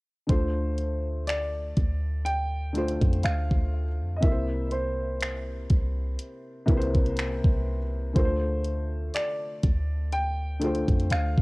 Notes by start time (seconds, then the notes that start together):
0.27 D2 D3 A3 F4 C5, kick, closed hi-hat
0.32 C5
0.78 closed hi-hat
1.27 D5, finger snap, closed hi-hat
1.77 D2, kick, closed hi-hat
2.25 G5, closed hi-hat
2.73 D3 A3 F4, closed hi-hat
2.78 C5
2.88 closed hi-hat
3.02 F2, kick, closed hi-hat
3.13 closed hi-hat
3.23 D2 F5, finger snap, closed hi-hat
3.51 D2, kick
4.00 F2
4.16 C3 D#5
4.22 C2 A#3 E4 A#4 E5, kick, closed hi-hat
4.32 C5
4.71 C5, closed hi-hat
5.21 finger snap, closed hi-hat
5.70 C2, kick, closed hi-hat
6.19 closed hi-hat
6.66 C2 C3 A#3 E4, kick, closed hi-hat
6.71 B4
6.77 C5
6.82 closed hi-hat
6.95 kick, closed hi-hat
7.06 closed hi-hat
7.17 finger snap, closed hi-hat
7.44 C2, kick
8.13 D2 D3 A3 F4 C5, kick, closed hi-hat
8.18 A#4
8.25 C5
8.64 closed hi-hat
9.14 D5, finger snap, closed hi-hat
9.63 D2, kick, closed hi-hat
10.13 G5, closed hi-hat
10.60 D3 A3 F4, closed hi-hat
10.65 C5
10.75 closed hi-hat
10.88 F2, kick, closed hi-hat
11.00 closed hi-hat
11.10 D2 F5, finger snap, closed hi-hat
11.38 C2, kick